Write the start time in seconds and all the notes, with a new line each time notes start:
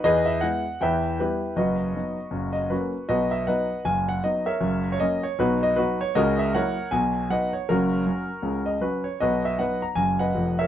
0.04 E2 E3 G#4 B4 D#5
0.26 E5
0.41 G#3 B3 E4 F#5
0.81 E2 E3 B4 E5 G5
1.19 G3 B3 E4 G4 B4
1.56 F#1 F#2 F#4 B4 D#5
1.95 F#3 B3 D#4
2.31 F#1 F#2
2.53 D#5
2.70 F#3 A#3 C#4 F#4 B4
3.09 B1 B2 F#4 B4 D#5
3.31 E5
3.47 F#3 B3 D#4 B4 D#5 F#5
3.85 F#1 F#2 G#5
4.09 F#5
4.24 F#3 B3 D#4 D#5
4.46 A#4 C#5 E5
4.61 F#1 F#2
4.92 C#5
4.99 F#3 A#3 C#4 D#5
5.23 C#5
5.39 B1 B2 D#4 F#4 B4
5.63 D#5
5.76 F#3 B3 D#4 F#4 B4
6.01 C#5
6.15 C#2 C#3 F#4 A#4 D#5
6.39 E5
6.55 F#3 A#3 E4 A#4 C#5 F#5
6.91 B1 B2 G#5
7.30 F#3 B3 D#4 B4 D#5 F#5
7.53 C#5
7.69 F#1 F#2 C#4 F#4 A#4
8.06 F#3 C#4
8.43 C#2 C#3
8.66 D#5
8.81 F#3 C#4 F#4 B4
9.04 C#5
9.20 B1 B2 F#4 B4 D#5
9.45 E5
9.58 F#3 B3 D#4 B4 D#5 F#5
9.82 A#5
9.95 F#1 F#2 G#5
10.19 B4 D#5 F#5
10.35 F1 F2
10.59 A#4 C#5 E5